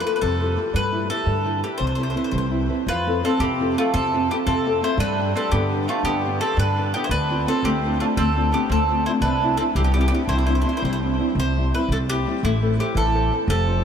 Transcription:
0.00 F4 G4 A4 B4
0.07 B4
0.16 B4
0.21 F2 C3 A4
0.40 F4 G4 A4
0.57 F4 G4 A4
0.73 G2 G3 B4
0.92 E4 G4 B4
1.10 E4 G4 A4 B4
1.26 G2 D3
1.45 E4 G4 B4
1.63 E4 G4 B4
1.78 C2 C3 C5
1.87 C5
1.95 C4 E4 B4 C5
2.03 C5
2.10 C5
2.15 C4 E4 B4 C5
2.24 C5
2.31 C2 G3 C5
2.38 C5
2.51 C4 E4 B4
2.69 C4 E4 B4
2.87 F2 F3 F4 B4
3.07 C4 F4 A4
3.24 C4 F4 A4
3.39 F2 C3 C4 G4
3.60 C4 F4 A4
3.77 A3 C4 F4 A4
3.94 F2 C3 C4 A4
4.13 C4 F4 A4
4.31 B3 C4 F4 G4 A4
4.46 F2 C3 C4 A4
4.66 C4 F4 A4
4.82 C4 E4 F4 A4 C5
4.97 G2 G3 D4 B4
5.19 D4 G4 B4
5.36 C4 D4 G4 A4 B4
5.52 G2 D3 B3 G4
5.73 D4 G4 B4
5.88 A3 D4 F4 G4 B4
6.03 G2 D3 B3 G4
6.25 D4 G4 B4
6.41 C4 D4 G4 A4 B4
6.57 G2 D3 D4 B4
6.78 D4 G4 B4
6.94 B3 D4 G4 B4
7.04 E4 C5
7.09 D2 D3 D4 B4
7.30 C4 D4 F4
7.47 C4 D4 F4 A4
7.63 D2 A3 C4 G4
7.85 C4 D4 F4
8.00 A3 C4 D4 F4
8.17 D2 A3 C4 A4
8.36 C4 D4 F4
8.52 B3 C4 D4 F4 G4
8.70 D2 A3 C4 A4
8.90 C4 D4 F4
9.06 C4 D4 E4 F4 C5
9.21 C2 C3 D4 B4
9.42 C4 D4 E4
9.57 C4 D4 E4 A4
9.75 C2 G3 C4 G4
9.84 B3 G4
9.92 B3 C4 D4 G4
9.96 B3 E4
10.01 G4
10.06 B3 G4
10.11 B3 C4 D4 E4 G4
10.27 C2 G3 E4 C5
10.37 E4 C5
10.46 C4 D4 E4 C5
10.52 E4 C5
10.61 E4 C5
10.65 C4 D4 E4 C5
10.73 E4
10.77 C5
10.82 C2 G3 E4 C5
10.89 E4 C5
11.02 C4 D4 E4
11.19 C4 D4 E4
11.35 C2 C3
11.40 C5
11.57 G3 C4 E4
11.74 G3 C4 E4 B4
11.89 C2 G3 A4
12.10 G3 C4 E4 G4
12.27 G3 C4 E4
12.43 A1 A3 E4
12.62 A4 B4 C5
12.79 G4 A4 B4 C5
12.95 A1 E3 A4
13.14 A4 B4 C5
13.33 A4 B4 C5
13.48 F1 F3 A4
13.68 F4 A4 C5

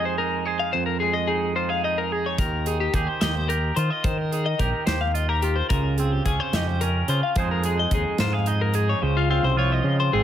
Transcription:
Already playing: F2 G#3 D#4 G#4
0.05 C5
0.18 D#4 A#4
0.46 G#4 C5
0.59 F5
0.73 F2 C5
0.86 A#4
1.00 G#3 G#4
1.13 D#5
1.27 D#4 G#4
1.56 F4 C5
1.69 G#4 F5
1.84 D#4 D#5
1.98 A#4
2.12 G#4
2.26 C#5
2.38 D#2 D#3 A#4, kick, closed hi-hat
2.66 D#4 G#4, closed hi-hat
2.80 G4
2.94 D#2 G4 G#4, kick, closed hi-hat
3.07 C5
3.21 D#2 G4 D#5, snare, closed hi-hat
3.35 C5
3.49 G4 A#4, closed hi-hat
3.76 D#3 F4 C5, closed hi-hat
3.90 D#5
4.04 D#3 C5, kick, closed hi-hat
4.18 A#4
4.32 D#4 G#4, closed hi-hat
4.46 D#5
4.59 A#1 G4 A#4, kick, closed hi-hat
4.86 D#2 G4 C5, snare, closed hi-hat
5.01 F5
5.14 F4 D#5, closed hi-hat
5.29 G4 A#4
5.42 F4 G4, closed hi-hat
5.56 C5
5.69 C#2 C#3 A#4, kick, closed hi-hat
5.98 C4 G#4, closed hi-hat
6.12 G4
6.26 C#2 C#4 G#4, kick, closed hi-hat
6.40 C5
6.53 F2 G4 D#5, snare, closed hi-hat
6.67 C5
6.81 C#4 A#4, closed hi-hat
7.08 C#3 F4 C5, closed hi-hat
7.23 F5
7.36 F2 F3 G#3 D#4 G#4 C5, kick, closed hi-hat
7.51 A#4
7.63 G#3 G#4, closed hi-hat
7.79 D#5
7.91 D#2 D#4 G#4, kick, closed hi-hat
8.18 G#2 F4 C5, snare, closed hi-hat
8.33 G#4 F5
8.46 D#4 D#5, closed hi-hat
8.61 A#4
8.74 G#4, closed hi-hat
8.89 C#5
9.02 C#2 C#3 C5
9.17 F4
9.30 C4 F4
9.43 C2 C5
9.57 F3 F4 C#5
9.72 D#5
9.84 C#3
10.00 C5
10.13 G#1 G#2 C4 G#4

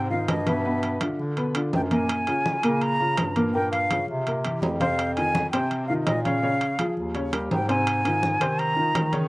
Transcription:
Already playing: G#2
0.10 D#3 D#4 F4 F5, high conga
0.28 G2 D#5, high conga, high timbale, low timbale
0.46 B2 B3 B4 E5, high conga, high timbale
0.65 B2 B3 B4, high conga
0.83 high conga, high timbale
1.01 D3 D4 F4, high conga, high timbale, low timbale
1.19 D3, high conga
1.37 B2 B3 B4, high conga, high timbale
1.55 D3 D4 F4, high conga, high timbale
1.73 F#2 G5, high conga, low timbale
1.91 A#2 A#3 A#4 G#5, high conga, high timbale
2.09 high conga, high timbale
2.27 C#3 C#4 F4, high conga, high timbale
2.46 high conga, low timbale
2.63 A#2 C#3 A#3 A#4, high conga, high timbale
2.81 A#5, high conga, high timbale
3.00 C#3 C#4 F4, high conga
3.17 G2, high conga, high timbale, low timbale
3.36 A#2 A#3 A#4, high conga, high timbale
3.54 A#2 A#3 A#4 G5, high conga
3.72 F5, high conga, high timbale
3.91 C#3 C#4 F4, high conga, high timbale, low timbale
4.08 C3, high conga
4.26 A#2 A#3 A#4, high conga, high timbale
4.45 E3 E4 G4, high conga, high timbale
4.62 F2, high conga, low timbale
4.80 C3 C4 C5 F5, high conga, high timbale
4.98 high conga, high timbale
5.15 D#3 D#4 F4 G#5, high conga, high timbale
5.35 high conga, low timbale
5.51 C3 C4 C5 G5, high conga, high timbale
5.71 high conga, high timbale
5.87 D#3 D#4 F4 F5, high conga
6.05 A#2 D#5, high conga, high timbale, low timbale
6.24 C#3 C#4 C#5 F5, high conga, high timbale
6.43 C#3 C#4 C#5, high conga
6.61 high conga, high timbale
6.79 F3 F4 G#4, high conga, high timbale, low timbale
6.97 D#2, high conga
7.14 C#3 C#4 C#5, high conga, high timbale
7.33 G3 G4 A#4, high conga, high timbale
7.50 G#2 G5, high conga, low timbale
7.68 C3 C4 C5 G#5, high timbale
7.87 high conga, high timbale
8.05 D#3 D#4 F4, high conga, high timbale
8.23 high conga, low timbale
8.40 C3 D#3 C4 C5, high conga, high timbale
8.59 A#5, high conga, high timbale
8.76 D#3 D#4 F4, high conga
8.94 D#3, high conga, high timbale, low timbale
9.12 C#3 C#4 C#5, high conga, high timbale

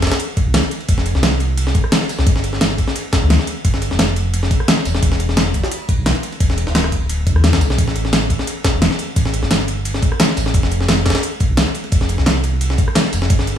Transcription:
Already playing: F1
0.02 kick, snare, closed hi-hat, ride
0.07 snare, ride
0.12 snare, ride
0.20 closed hi-hat, ride
0.37 kick, closed hi-hat, ride
0.46 C2
0.54 snare, closed hi-hat, ride
0.63 ride
0.71 closed hi-hat, ride
0.81 ride
0.89 F1, kick, closed hi-hat, ride
0.98 snare
1.06 closed hi-hat, ride
1.15 C2, snare
1.23 snare, closed hi-hat, ride
1.40 closed hi-hat, ride
1.58 closed hi-hat, ride
1.67 snare
1.75 kick, closed hi-hat, ride
1.84 cross-stick
1.92 snare, closed hi-hat, ride
2.01 snare
2.09 closed hi-hat, open hi-hat
2.19 C2, snare
2.27 G1, kick, closed hi-hat, ride
2.36 snare
2.44 closed hi-hat, ride
2.53 snare
2.61 snare, closed hi-hat, ride
2.78 kick, closed hi-hat, ride
2.88 snare
2.96 closed hi-hat, ride
3.13 kick, snare, closed hi-hat, ride
3.22 D2
3.30 snare, closed hi-hat, ride
3.39 snare
3.47 closed hi-hat, ride
3.65 G1, kick, closed hi-hat, ride
3.74 snare
3.82 closed hi-hat, ride
3.91 F1, snare
3.99 snare, closed hi-hat, ride
4.16 closed hi-hat, ride
4.34 closed hi-hat, ride
4.43 snare
4.51 kick, closed hi-hat, ride
4.60 cross-stick
4.68 snare, closed hi-hat, ride
4.77 snare
4.85 E1, closed hi-hat, open hi-hat
4.95 snare
5.03 E1, kick, closed hi-hat, ride
5.12 snare
5.20 closed hi-hat, ride
5.29 snare
5.37 snare, closed hi-hat, ride
5.54 kick, closed hi-hat, ride
5.63 snare
5.71 closed hi-hat, ride
5.89 kick, closed hi-hat, ride
5.98 B1
6.06 snare, closed hi-hat, ride
6.15 ride
6.23 closed hi-hat, ride
6.32 ride
6.40 E1, kick, closed hi-hat, ride
6.50 snare
6.58 closed hi-hat, ride
6.67 D1, snare
6.75 snare, closed hi-hat, ride
6.84 cross-stick
6.92 kick, closed hi-hat, ride
7.09 closed hi-hat, ride
7.27 E2, kick, closed hi-hat, ride
7.36 cross-stick
7.44 snare, closed hi-hat, ride
7.53 kick, snare, ride
7.61 B1, closed hi-hat, open hi-hat
7.70 snare
7.78 A1, kick, closed hi-hat, ride
7.88 snare
7.96 closed hi-hat, ride
8.05 snare
8.13 snare, closed hi-hat, ride
8.30 kick, closed hi-hat, ride
8.39 snare
8.47 closed hi-hat, ride
8.64 kick, snare, closed hi-hat, ride
8.74 E1
8.82 snare, closed hi-hat, ride
8.91 snare
8.99 closed hi-hat, ride
9.16 A1, kick, closed hi-hat, ride
9.25 snare
9.34 closed hi-hat, ride
9.43 G1, snare
9.51 snare, closed hi-hat, ride
9.68 closed hi-hat, ride
9.85 closed hi-hat, ride
9.94 snare
10.02 kick, closed hi-hat, ride
10.12 cross-stick
10.20 snare, closed hi-hat, ride
10.29 snare
10.37 A1, closed hi-hat, open hi-hat
10.46 snare
10.54 F1, kick, closed hi-hat, ride
10.63 snare
10.71 closed hi-hat, ride
10.81 snare
10.88 snare, closed hi-hat, ride
11.06 kick, snare, closed hi-hat, ride
11.10 snare, ride
11.15 snare, ride
11.23 closed hi-hat, ride
11.40 kick, closed hi-hat, ride
11.50 C2
11.57 snare, closed hi-hat, ride
11.67 ride
11.75 closed hi-hat, ride
11.84 ride
11.92 F1, kick, closed hi-hat, ride
12.01 snare
12.09 closed hi-hat, ride
12.18 C2, snare
12.26 snare, closed hi-hat, ride
12.44 closed hi-hat, ride
12.61 closed hi-hat, ride
12.70 snare
12.78 kick, closed hi-hat, ride
12.88 cross-stick
12.95 snare, closed hi-hat, ride
13.05 snare
13.13 F1, closed hi-hat, open hi-hat
13.22 snare
13.30 G1, kick, closed hi-hat, ride
13.39 snare
13.47 closed hi-hat, ride

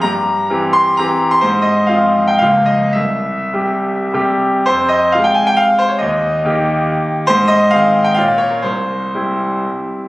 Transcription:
0.01 G2 A#5
0.50 E3 C4 G4
0.73 C6
0.97 E3 C4 G4 A#5
1.31 C6
1.41 G#2 C5
1.62 D#5
1.87 F3 C4 F4 F5
2.27 G5
2.39 C#2 F3 A#3 F4 F5
2.66 D#5
2.93 C2 E5
3.53 C3 G3 G4
4.13 C3 G3 G4
4.66 F2 C5
4.89 D#5
5.12 C3 G#3 F4 F5
5.24 G5
5.34 G#5
5.47 G5
5.57 F5
5.79 C5
5.88 C#5
5.98 D#2 D#5
6.44 D#3 A#3 G4
7.27 G#2 C5
7.48 D#5
7.71 D#3 C4 G#4 F5
8.04 G5
8.15 A#2 A#3 C#4 F4 F5
8.38 C#5
8.50 A#4
8.62 C2 C5
9.15 G3 C4 E4

